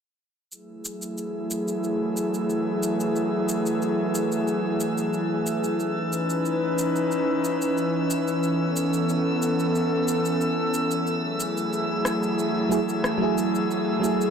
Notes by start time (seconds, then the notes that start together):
0.50 E3 F#3 A3 E4 G#4 E6, shaker
0.85 shaker
1.02 shaker
1.18 shaker
1.51 shaker
1.68 shaker
1.84 shaker
2.17 shaker
2.34 shaker
2.50 shaker
2.83 shaker
3.00 shaker
3.16 shaker
3.49 shaker
3.66 shaker
3.82 shaker
4.15 shaker
4.32 shaker
4.48 shaker
4.80 shaker
4.98 shaker
5.13 shaker
5.46 shaker
5.64 shaker
5.78 E3 C#4 D#4 B4, shaker
6.13 shaker
6.30 shaker
6.45 shaker
6.78 shaker
6.96 shaker
7.12 shaker
7.44 shaker
7.62 shaker
7.77 shaker
8.10 shaker
8.28 shaker
8.43 B3 A4, shaker
8.76 shaker
8.93 shaker
9.09 shaker
9.42 shaker
9.59 shaker
9.75 shaker
10.08 shaker
10.25 shaker
10.41 shaker
10.74 shaker
10.91 shaker
11.06 F#3 A3 E4 G#4, shaker
11.40 shaker
11.57 shaker
11.73 shaker
12.05 cross-stick, shaker
12.23 shaker
12.39 shaker
12.69 F#3 A3 E4 G#4, shaker
12.89 shaker
13.04 cross-stick, shaker
13.18 F#3 A3 E4
13.23 G#4
13.38 shaker
13.55 shaker
13.71 shaker
14.00 F#3 A3 E4
14.04 G#4, shaker
14.21 shaker